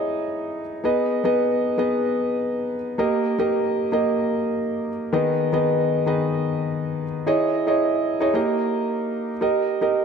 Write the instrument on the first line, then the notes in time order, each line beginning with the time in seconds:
grand piano
Already playing: D#4 E4 G#4 C#5 D#5
0.84 B3 D#4 G#4 B4 D#5
1.24 B3 D#4 G#4 B4 D#5
1.78 B3 D#4 G#4 B4 D#5
2.98 A#3 D#4 G4 A#4 D#5
3.38 A#3 D#4 G4 A#4 D#5
3.92 A#3 D#4 G4 A#4 D#5
5.13 D#3 B3 D#4 G#4 B4 D#5
5.53 D#3 B3 D#4 G#4 B4 D#5
6.06 D#3 B3 D#4 G#4 B4 D#5
7.26 D#4 E4 G#4 C#5 D#5
7.67 D#4 E4 G#4 C#5 D#5
8.20 D#4 E4 G#4 C#5 D#5
8.34 A#3 D#4 G4 A#4 D#5
9.41 D#4 G4 A#4 D#5
9.81 D#4 G4 A#4 D#5